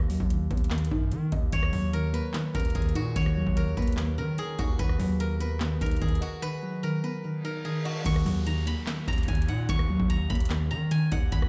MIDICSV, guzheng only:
0, 0, Header, 1, 2, 480
1, 0, Start_track
1, 0, Key_signature, -6, "minor"
1, 0, Tempo, 408163
1, 1795, Time_signature, 4, 2, 24, 8
1, 13509, End_track
2, 0, Start_track
2, 0, Title_t, "Guzheng"
2, 0, Program_c, 0, 107
2, 0, Note_on_c, 0, 66, 82
2, 0, Note_on_c, 0, 68, 83
2, 149, Note_off_c, 0, 68, 0
2, 581, Note_off_c, 0, 66, 0
2, 1796, Note_on_c, 0, 73, 93
2, 2273, Note_on_c, 0, 70, 85
2, 2513, Note_on_c, 0, 71, 82
2, 2584, Note_off_c, 0, 70, 0
2, 2995, Note_on_c, 0, 70, 86
2, 3066, Note_off_c, 0, 71, 0
2, 3232, Note_on_c, 0, 68, 68
2, 3475, Note_on_c, 0, 66, 78
2, 3711, Note_off_c, 0, 73, 0
2, 3716, Note_on_c, 0, 73, 103
2, 4190, Note_off_c, 0, 70, 0
2, 4195, Note_on_c, 0, 70, 86
2, 4434, Note_on_c, 0, 71, 72
2, 4504, Note_off_c, 0, 70, 0
2, 4916, Note_on_c, 0, 70, 73
2, 4986, Note_off_c, 0, 71, 0
2, 5151, Note_off_c, 0, 68, 0
2, 5156, Note_on_c, 0, 68, 88
2, 5391, Note_off_c, 0, 66, 0
2, 5396, Note_on_c, 0, 66, 81
2, 5635, Note_on_c, 0, 71, 99
2, 5705, Note_off_c, 0, 70, 0
2, 5964, Note_off_c, 0, 73, 0
2, 6117, Note_on_c, 0, 70, 83
2, 6187, Note_off_c, 0, 71, 0
2, 6356, Note_on_c, 0, 71, 81
2, 6426, Note_off_c, 0, 70, 0
2, 6838, Note_on_c, 0, 70, 88
2, 6909, Note_off_c, 0, 71, 0
2, 7068, Note_off_c, 0, 68, 0
2, 7073, Note_on_c, 0, 68, 72
2, 7307, Note_off_c, 0, 66, 0
2, 7312, Note_on_c, 0, 66, 81
2, 7553, Note_on_c, 0, 71, 111
2, 7624, Note_off_c, 0, 70, 0
2, 8034, Note_on_c, 0, 70, 86
2, 8104, Note_off_c, 0, 71, 0
2, 8276, Note_on_c, 0, 71, 67
2, 8347, Note_off_c, 0, 70, 0
2, 8757, Note_on_c, 0, 70, 77
2, 8827, Note_off_c, 0, 71, 0
2, 8990, Note_off_c, 0, 68, 0
2, 8994, Note_on_c, 0, 68, 81
2, 9229, Note_off_c, 0, 66, 0
2, 9234, Note_on_c, 0, 66, 81
2, 9478, Note_on_c, 0, 85, 96
2, 9955, Note_on_c, 0, 82, 84
2, 10197, Note_on_c, 0, 83, 83
2, 10268, Note_off_c, 0, 70, 0
2, 10268, Note_off_c, 0, 82, 0
2, 10679, Note_on_c, 0, 82, 83
2, 10749, Note_off_c, 0, 83, 0
2, 10917, Note_on_c, 0, 80, 71
2, 10961, Note_off_c, 0, 85, 0
2, 11157, Note_on_c, 0, 78, 80
2, 11398, Note_on_c, 0, 85, 107
2, 11668, Note_off_c, 0, 68, 0
2, 11869, Note_off_c, 0, 82, 0
2, 11874, Note_on_c, 0, 82, 89
2, 12100, Note_off_c, 0, 66, 0
2, 12110, Note_on_c, 0, 83, 76
2, 12181, Note_off_c, 0, 82, 0
2, 12591, Note_on_c, 0, 82, 74
2, 12662, Note_off_c, 0, 83, 0
2, 12681, Note_off_c, 0, 80, 0
2, 12834, Note_on_c, 0, 80, 88
2, 12882, Note_off_c, 0, 85, 0
2, 13047, Note_off_c, 0, 78, 0
2, 13075, Note_on_c, 0, 78, 83
2, 13313, Note_on_c, 0, 83, 101
2, 13384, Note_off_c, 0, 82, 0
2, 13509, Note_off_c, 0, 78, 0
2, 13509, Note_off_c, 0, 80, 0
2, 13509, Note_off_c, 0, 83, 0
2, 13509, End_track
0, 0, End_of_file